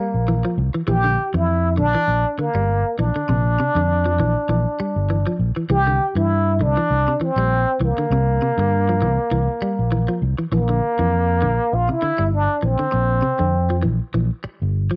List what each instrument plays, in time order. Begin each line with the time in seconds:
Already playing: clean electric guitar G3, trombone A#3
0.14 fingered electric bass A#1
0.28 clean electric guitar E3
0.45 clean electric guitar F3
0.58 fingered electric bass C2
0.74 clean electric guitar E3, muted fingered electric bass stroke
0.88 fingered electric bass A#1, clean electric guitar E3, trombone G4
1.04 clean electric guitar D3
1.34 fingered electric bass F2, clean electric guitar E3, trombone E4
1.77 fingered electric bass A#1, clean electric guitar D3, trombone D4
1.95 clean electric guitar E3
2.08 fingered electric bass A#1
2.38 clean electric guitar D3, trombone A#3, muted fingered electric bass stroke
2.54 fingered electric bass G1, clean electric guitar G3
2.99 fingered electric bass A#1, clean electric guitar E3, trombone D4
3.16 clean electric guitar D3, muted fingered electric bass stroke
3.29 fingered electric bass A#1, clean electric guitar C3
3.60 clean electric guitar C3
3.75 fingered electric bass F2, clean electric guitar D3
4.05 clean electric guitar F3
4.19 fingered electric bass A#1, clean electric guitar E3
4.49 fingered electric bass A#1, clean electric guitar E3
4.80 clean electric guitar G3, muted fingered electric bass stroke
4.96 fingered electric bass G1
5.10 clean electric guitar E3
5.27 clean electric guitar F3
5.39 fingered electric bass A#1
5.56 clean electric guitar E3, muted fingered electric bass stroke
5.70 fingered electric bass C2, clean electric guitar E3, trombone G4
5.87 clean electric guitar D3
6.15 fingered electric bass G2, clean electric guitar E3, trombone E4
6.59 fingered electric bass C2, clean electric guitar D3, trombone D4
6.77 clean electric guitar E3
6.90 fingered electric bass C2
7.08 clean electric guitar C3
7.20 clean electric guitar E3, trombone C4, muted fingered electric bass stroke
7.36 fingered electric bass A#1, clean electric guitar G3
7.80 fingered electric bass C2, clean electric guitar E3
7.84 trombone A#3
7.97 clean electric guitar D3, muted fingered electric bass stroke
8.10 fingered electric bass C2, clean electric guitar C3
8.42 clean electric guitar C3
8.58 fingered electric bass G2, clean electric guitar D3
8.89 clean electric guitar F3
9.02 fingered electric bass C2, clean electric guitar E3
9.31 fingered electric bass C2, clean electric guitar E3
9.61 clean electric guitar G3, muted fingered electric bass stroke
9.79 fingered electric bass A#1
9.92 clean electric guitar E3
10.08 clean electric guitar F3
10.22 fingered electric bass C2
10.38 clean electric guitar E3, muted fingered electric bass stroke
10.52 fingered electric bass A#1, clean electric guitar E3, trombone A#3
10.69 clean electric guitar D3
10.99 fingered electric bass F2, clean electric guitar E3
11.42 fingered electric bass A#1, clean electric guitar D3
11.73 fingered electric bass A#1, trombone F4
11.89 clean electric guitar C3, trombone E4
12.02 clean electric guitar D3, muted fingered electric bass stroke
12.18 fingered electric bass G1, clean electric guitar G3
12.34 trombone D4
12.63 fingered electric bass A#1, clean electric guitar E3, trombone C4
12.79 clean electric guitar D3, muted fingered electric bass stroke
12.92 fingered electric bass A#1, muted clean electric guitar stroke
13.22 clean electric guitar C3
13.39 fingered electric bass F2, clean electric guitar D3
13.70 clean electric guitar F3
13.82 fingered electric bass A#1, clean electric guitar E3
14.14 fingered electric bass A#1, clean electric guitar E3
14.44 muted clean electric guitar stroke, muted fingered electric bass stroke
14.62 fingered electric bass G1
14.91 clean electric guitar F3